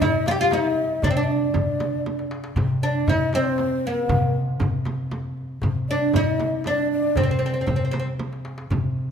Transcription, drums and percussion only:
0.01 darbuka dum, frame drum
0.26 darbuka tek, frame drum
0.51 darbuka tek, frame drum
0.77 darbuka ka
1.02 darbuka dum, frame drum
1.54 darbuka dum, frame drum
1.80 darbuka tek, frame drum
2.06 darbuka tek, frame drum
2.19 darbuka ka
2.31 darbuka tek
2.44 darbuka ka
2.57 frame drum, darbuka dum
3.08 frame drum, darbuka dum
3.33 darbuka tek, frame drum
3.58 darbuka tek, frame drum
3.84 darbuka ka
4.09 darbuka dum, frame drum
4.60 darbuka dum, frame drum
4.85 darbuka tek, frame drum
5.11 darbuka tek, frame drum
5.37 darbuka ka
5.62 darbuka dum, frame drum
6.13 darbuka dum, frame drum
6.40 darbuka tek, frame drum
6.64 darbuka tek, frame drum
6.89 darbuka ka
7.16 darbuka dum, frame drum
7.67 darbuka dum, frame drum
7.93 darbuka tek, frame drum
8.19 darbuka tek, frame drum
8.33 darbuka ka
8.45 darbuka tek
8.58 darbuka ka
8.71 darbuka dum, frame drum

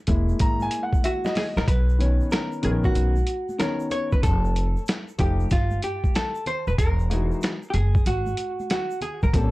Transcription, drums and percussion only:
0.07 kick, closed hi-hat, low conga, shaker
0.29 high conga, shaker
0.39 kick, closed hi-hat, shaker
0.60 high conga, shaker
0.71 closed hi-hat, shaker
0.93 kick, high conga, shaker
1.04 closed hi-hat, low conga, shaker
1.25 snare, high conga, shaker
1.35 snare, open hi-hat, low conga, shaker
1.57 snare, shaker
1.68 kick, closed hi-hat, shaker
1.89 shaker
2.00 closed hi-hat, shaker
2.21 shaker
2.31 snare, closed hi-hat, shaker
2.52 shaker
2.63 closed hi-hat, high conga, low conga, shaker
2.84 kick, high conga, shaker
2.95 closed hi-hat, shaker
3.16 high conga, shaker
3.27 closed hi-hat, shaker
3.49 high conga, shaker
3.60 snare, closed hi-hat, low conga, shaker
3.80 shaker
3.91 closed hi-hat, low conga, shaker
4.12 kick, shaker
4.23 kick, closed hi-hat, shaker
4.45 shaker
4.56 closed hi-hat, shaker
4.77 shaker
4.86 snare, closed hi-hat, shaker
5.08 shaker
5.19 kick, closed hi-hat, high conga, low conga, shaker
5.40 high conga, shaker
5.50 kick, snare, closed hi-hat, shaker
5.71 high conga, shaker
5.82 closed hi-hat, shaker
6.04 kick, high conga, shaker
6.15 snare, closed hi-hat, low conga, shaker
6.35 shaker
6.46 closed hi-hat, low conga, shaker
6.67 shaker
6.78 kick, closed hi-hat, shaker
6.99 shaker
7.11 closed hi-hat, shaker
7.32 shaker
7.41 snare, closed hi-hat, shaker
7.63 shaker
7.73 closed hi-hat, high conga, low conga, shaker
7.95 kick, high conga, shaker
8.06 closed hi-hat, shaker
8.26 high conga, shaker
8.37 closed hi-hat, shaker
8.60 high conga, shaker
8.70 snare, closed hi-hat, low conga, shaker
8.91 shaker
9.01 closed hi-hat, low conga, shaker
9.22 kick, shaker
9.34 kick, closed hi-hat, shaker

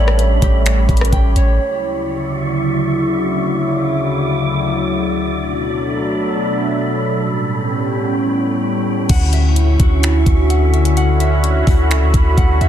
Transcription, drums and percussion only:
0.08 cross-stick
0.19 closed hi-hat
0.42 kick, closed hi-hat
0.66 finger snap, closed hi-hat
0.89 kick, closed hi-hat
0.97 closed hi-hat
1.01 cross-stick, closed hi-hat
1.12 kick, closed hi-hat
1.36 closed hi-hat
9.09 kick, closed hi-hat, crash
9.33 closed hi-hat
9.56 closed hi-hat
9.80 kick, closed hi-hat
10.03 finger snap, closed hi-hat
10.26 kick, closed hi-hat
10.50 closed hi-hat
10.74 closed hi-hat
10.85 closed hi-hat
10.97 closed hi-hat
11.20 closed hi-hat
11.44 closed hi-hat
11.67 kick, open hi-hat
11.91 finger snap, closed hi-hat
12.14 kick, closed hi-hat
12.38 kick, closed hi-hat
12.61 closed hi-hat

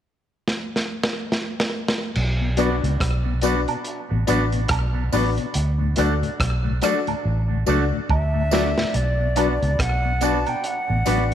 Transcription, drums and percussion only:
0.48 snare
0.76 snare
1.03 snare
1.32 snare
1.60 snare
1.88 snare
2.15 crash
2.57 closed hi-hat, tambourine
2.84 closed hi-hat
3.00 kick, cross-stick, closed hi-hat
3.41 closed hi-hat, tambourine
3.68 closed hi-hat, high woodblock
3.84 closed hi-hat
4.27 closed hi-hat, tambourine
4.52 closed hi-hat
4.68 kick, cross-stick, closed hi-hat, high woodblock
5.12 open hi-hat, tambourine
5.38 closed hi-hat
5.54 closed hi-hat
5.96 closed hi-hat, tambourine
6.23 closed hi-hat
6.40 kick, cross-stick, closed hi-hat
6.82 cross-stick, closed hi-hat, tambourine
7.07 closed hi-hat, high woodblock
7.67 tambourine
8.10 kick, high woodblock
8.51 snare, tambourine
8.78 snare
8.94 closed hi-hat
9.36 closed hi-hat, tambourine, high woodblock
9.63 closed hi-hat
9.79 kick, cross-stick, closed hi-hat
10.21 closed hi-hat, tambourine
10.46 closed hi-hat, high woodblock
10.64 closed hi-hat
11.06 closed hi-hat, tambourine

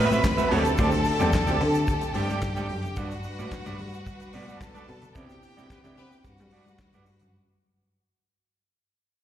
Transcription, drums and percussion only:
0.11 closed hi-hat, high conga, shaker
0.24 kick, snare, clap, closed hi-hat, shaker
0.38 closed hi-hat, muted conga, high conga, shaker
0.51 open hi-hat
0.65 closed hi-hat, low conga, shaker
0.78 kick, closed hi-hat, shaker
0.91 closed hi-hat, muted conga, shaker
1.04 open hi-hat, shaker
1.20 closed hi-hat, high conga, shaker
1.33 kick, snare, clap, closed hi-hat, muted conga, shaker
1.47 closed hi-hat, muted conga, high conga, low conga, shaker
1.61 open hi-hat, low conga
1.74 closed hi-hat, shaker
1.87 kick, closed hi-hat, muted conga, shaker
2.01 closed hi-hat, muted conga, shaker
2.14 open hi-hat, high conga
2.30 closed hi-hat, high conga, shaker
2.42 kick, snare, clap, closed hi-hat, shaker
2.56 closed hi-hat, high conga, shaker
2.69 open hi-hat
2.83 closed hi-hat, low conga, shaker
2.96 kick, closed hi-hat, muted conga, shaker
3.11 closed hi-hat, shaker
3.23 open hi-hat, shaker
3.39 closed hi-hat, high conga, shaker
3.51 kick, snare, clap, closed hi-hat, shaker
3.66 closed hi-hat, muted conga, high conga, low conga, shaker
3.79 open hi-hat, low conga
3.94 closed hi-hat, shaker
4.06 kick, closed hi-hat, shaker
4.20 closed hi-hat, shaker
4.33 open hi-hat, high conga
4.48 closed hi-hat, high conga, shaker
4.61 kick, snare, clap, closed hi-hat, shaker
4.75 closed hi-hat, muted conga, high conga, shaker
4.88 open hi-hat
5.02 closed hi-hat, low conga, shaker
5.15 kick, closed hi-hat, muted conga, shaker
5.29 snare, closed hi-hat, shaker
5.42 open hi-hat, shaker
5.57 closed hi-hat, high conga, shaker
5.70 kick, snare, clap, closed hi-hat, muted conga, shaker
5.84 closed hi-hat, high conga, low conga, shaker
5.97 open hi-hat, low conga, shaker
6.12 closed hi-hat, shaker
6.25 kick, closed hi-hat, muted conga, shaker
6.38 closed hi-hat, muted conga, shaker
6.51 open hi-hat, high conga
6.66 closed hi-hat, high conga, shaker
6.79 kick, snare, clap, closed hi-hat, muted conga, shaker
6.93 closed hi-hat, high conga, shaker
7.06 open hi-hat, shaker
7.19 closed hi-hat, low conga, shaker

